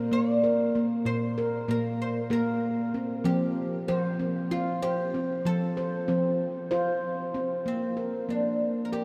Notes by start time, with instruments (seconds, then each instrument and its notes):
Already playing: handpan A#3
0.12 handpan A#3, oud D5
0.44 handpan A#4
0.75 handpan A#3
1.05 handpan A#2, oud C5
1.38 handpan A#4
1.68 handpan A#2 A#3, oud A#4
2.02 oud C5
2.30 handpan A#3 A#4, oud A#4
2.94 handpan C4
3.24 handpan F3 C4, oud G4
3.88 handpan F3 C5, oud F4
4.20 handpan C4
4.51 oud F4, handpan F4
4.83 oud G4, handpan C5
5.14 handpan C4
5.45 handpan F3, oud A4
5.77 handpan C5
6.08 handpan F3 C4
6.71 handpan F4 C5
7.34 handpan C4
7.66 handpan A#3, oud C4
7.97 handpan A#4
8.29 handpan A#3, oud D4
8.85 oud A#4
8.92 oud G4, handpan A#4